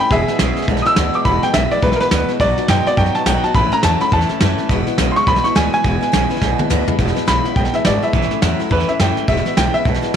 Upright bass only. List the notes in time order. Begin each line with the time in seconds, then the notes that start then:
0.11 E1
0.40 B1
0.68 B1
0.86 muted upright bass stroke
0.97 D2
1.25 E1
1.43 muted upright bass stroke
1.54 B1
1.83 B1
2.11 D2
2.29 muted upright bass stroke
2.40 B1
2.69 F#2
2.86 muted upright bass stroke
2.97 F#2
3.26 B1
3.43 muted upright bass stroke
3.55 A1
3.72 muted upright bass stroke
3.84 E2
4.12 E2
4.30 muted upright bass stroke
4.41 F#2
4.69 E1
4.98 B1
5.27 B1
5.56 D2
5.84 E1
6.14 B1
6.30 muted upright bass stroke
6.41 B1
6.71 D2
6.88 muted upright bass stroke
6.99 E1
7.28 B1
7.56 B1
7.85 G#1
8.13 A1
8.31 muted upright bass stroke
8.42 E2
8.60 muted upright bass stroke
8.71 E2
8.88 muted upright bass stroke
9.00 F#2
9.17 muted upright bass stroke
9.28 E1
9.57 B1
9.85 B1
10.03 muted upright bass stroke